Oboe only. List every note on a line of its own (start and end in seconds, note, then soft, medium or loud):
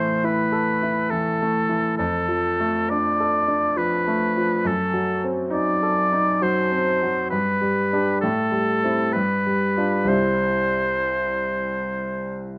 0.00 0.27 C5 soft
0.26 1.12 B4 soft
1.10 1.97 A4 soft
1.97 2.91 A4 soft
2.90 3.79 D5 medium
3.78 4.68 B4 soft
4.67 5.26 A4 soft
5.52 6.44 D5 medium
6.43 7.30 C5 soft
7.30 8.19 B4 soft
8.21 9.14 A4 soft
9.13 10.11 B4 soft
10.09 12.55 C5 soft